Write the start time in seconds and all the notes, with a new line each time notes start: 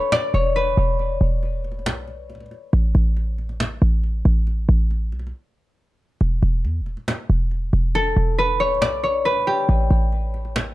Already playing: A4 B4 C#5
0.01 cajon slap
0.12 D5, cajon slap
0.34 E1 C#5
0.56 B4, cajon slap
0.77 E1, cajon slap
0.99 cajon slap
1.21 E1
1.43 cajon slap
1.64 cajon slap
1.72 cajon slap
1.79 cajon slap
1.86 B1, cajon slap
2.08 cajon slap
2.30 cajon slap
2.35 cajon slap
2.40 cajon slap
2.46 cajon slap
2.51 cajon slap
2.73 A1, cajon slap
2.95 A1, cajon slap
3.17 cajon slap
3.38 cajon slap
3.49 cajon slap
3.60 cajon slap
3.82 A1
4.04 cajon slap
4.25 A1, cajon slap
4.47 cajon slap
4.69 A1
4.91 cajon slap
5.12 B1, cajon slap
5.19 cajon slap
5.27 cajon slap
6.21 E1, cajon slap
6.42 E1, cajon slap
6.64 E2, cajon slap
6.81 E1
6.86 cajon slap
6.97 cajon slap
7.08 cajon slap
7.30 E1
7.51 cajon slap
7.73 E1, cajon slap
7.95 A4, cajon slap
8.17 E1
8.38 B4, cajon slap
8.60 C#5, cajon slap
8.67 cajon slap
8.75 cajon slap
8.82 B1 D5, cajon slap
9.03 C#5, cajon slap
9.25 B4, cajon slap
9.31 cajon slap
9.36 cajon slap
9.42 cajon slap
9.47 G4, cajon slap
9.69 A1, cajon slap
9.90 A1, cajon slap
10.12 cajon slap
10.34 cajon slap
10.45 cajon slap
10.56 cajon slap